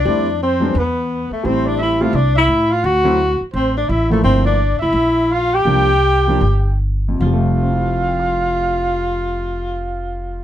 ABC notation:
X:1
M:4/4
L:1/8
Q:"Swing" 1/4=170
K:F
V:1 name="Trumpet"
d2 c2 =B3 A | c d e f d e2 f | ^f3 z c d e A | c d2 e3 f g- |
g6 z2 | f8- | f8 |]
V:2 name="Tenor saxophone"
D2 C2 =B,3 A, | C D E F D E2 F | ^F3 z C D E A, | C D2 E3 F G- |
G6 z2 | F8- | F8 |]
V:3 name="Grand piano"
z8 | z8 | z8 | z8 |
z8 | z2 [CEGcegc']6- | [CEGcegc']8 |]
V:4 name="Grand piano"
[G,A,CE] z2 [_G,_A,=B,D] z4 | [G,A,CE]3 [G,A,CE] z4 | z [^F,A,CE] z4 z [=F,A,B,E]- | [F,A,B,E]2 z6 |
[F,G,B,D] z2 [F,G,B,D] z4 | [F,,C,F,G,A,]8- | [F,,C,F,G,A,]8 |]
V:5 name="Upright bass" clef=bass
F,,4 E,,3 z | A,,,4 C,,2 A,,2 | D,,3 z A,,,2 A,,,2 | G,,,3 F,,, B,,,4 |
C,,4 G,,,4 | F,,,8- | F,,,8 |]